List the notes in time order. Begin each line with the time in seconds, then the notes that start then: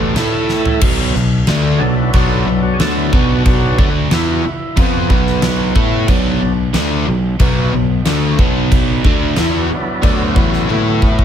Already playing: A1 A2 E3 A3 B3 D4 F#4 D5
0.14 A2 A3 E4 A4 E5, snare, crash
0.49 snare
0.65 floor tom
0.81 B1 B2 F#3 B3, kick, crash
1.14 B1 B2 F#3, snare
1.47 D2 D3 A3 D4, snare, crash
1.77 B1 F#3 B3 D4 G#4 A4
1.82 B2 F#3
1.96 E4
2.13 B1 B2 F#3 B3 F#4, kick, crash
2.29 A4
2.45 B1 B2 F#3 E4
2.63 F#4
2.74 G#4
2.79 D2 D3 A3 D4 A4, snare, crash
2.97 E4
3.13 B1 B2 F#3 B3 D4 F#4, kick
3.44 F#3 B3 D4 F4, kick, crash
3.49 F#4
3.79 D2 D3 A3 D4, kick
4.11 E2 E3 B3 E4, snare, crash
4.32 F#4
4.45 E4, muted fingered electric bass stroke, muted overdriven electric guitar stroke
4.76 F2 F3 B3 C4 F4, kick, crash
5.09 B1 B2 F#3 B3, kick
5.27 snare
5.42 snare, crash
5.75 A2 A3 E4 A4, kick
6.07 B1 B2 F#3 B3 D4, kick, crash
6.40 B1 B2 F#3
6.73 D2 D3 A3 D4, snare, crash
7.06 B1 B2 F#3
7.39 B1 B2 F#3 B3, kick, crash
7.73 B1 B2 F#3
8.05 D2 D3 A3 D4, snare, crash
8.37 B1 B2 F#3 B3, kick
8.72 kick, crash
9.04 D2 D3 A3 D4, kick
9.36 E2 E3 B3 E4, snare, crash
9.58 F#4
9.70 F#3 B3, muted fingered electric bass stroke, muted overdriven electric guitar stroke
9.74 D4 E4
10.02 D2 D3 A3 D4, kick, crash
10.08 F#3 B3
10.35 A1 A2 E3 A3, kick
10.53 snare
10.68 A2 E3 A3 E4 A4, high tom
11.02 kick
11.19 kick